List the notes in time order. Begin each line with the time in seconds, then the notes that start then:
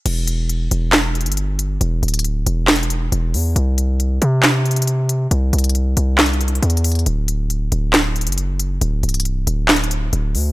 0.06 E1, closed hi-hat, crash
0.27 closed hi-hat
0.49 closed hi-hat
0.71 E1, closed hi-hat
0.93 snare, clap, closed hi-hat
1.15 closed hi-hat
1.21 closed hi-hat
1.26 G1, closed hi-hat
1.32 closed hi-hat
1.37 closed hi-hat
1.59 closed hi-hat
1.81 E1, closed hi-hat
2.03 D1, closed hi-hat
2.08 closed hi-hat
2.14 closed hi-hat
2.19 closed hi-hat
2.24 closed hi-hat
2.46 E1, closed hi-hat
2.68 snare, clap, closed hi-hat
2.76 closed hi-hat
2.83 closed hi-hat
2.90 closed hi-hat
3.12 E1, closed hi-hat
3.34 E2, open hi-hat
3.56 C2, closed hi-hat
3.78 closed hi-hat
4.00 closed hi-hat
4.22 C3, closed hi-hat
4.43 snare, clap, closed hi-hat
4.66 closed hi-hat
4.71 closed hi-hat
4.76 closed hi-hat
4.82 closed hi-hat
4.87 closed hi-hat
5.09 closed hi-hat
5.31 C2, closed hi-hat
5.53 C2, closed hi-hat
5.59 closed hi-hat
5.64 closed hi-hat
5.69 closed hi-hat
5.75 closed hi-hat
5.97 C2, closed hi-hat
6.18 snare, clap, closed hi-hat
6.26 closed hi-hat
6.33 closed hi-hat
6.41 closed hi-hat
6.48 closed hi-hat
6.55 closed hi-hat
6.62 E2, closed hi-hat
6.70 closed hi-hat
6.77 closed hi-hat
6.84 closed hi-hat, open hi-hat
6.92 closed hi-hat
6.95 closed hi-hat
6.99 closed hi-hat
7.06 D1, closed hi-hat
7.28 closed hi-hat
7.50 closed hi-hat
7.72 D1, closed hi-hat
7.93 snare, clap, closed hi-hat
8.16 closed hi-hat
8.21 closed hi-hat
8.27 F#1, closed hi-hat
8.32 closed hi-hat
8.38 closed hi-hat
8.60 closed hi-hat
8.81 D1, closed hi-hat
9.03 C1, closed hi-hat
9.09 closed hi-hat
9.14 closed hi-hat
9.20 closed hi-hat
9.25 closed hi-hat
9.47 D1, closed hi-hat
9.68 snare, clap, closed hi-hat
9.76 closed hi-hat
9.84 closed hi-hat
9.91 closed hi-hat
10.13 D1, closed hi-hat
10.35 D2, open hi-hat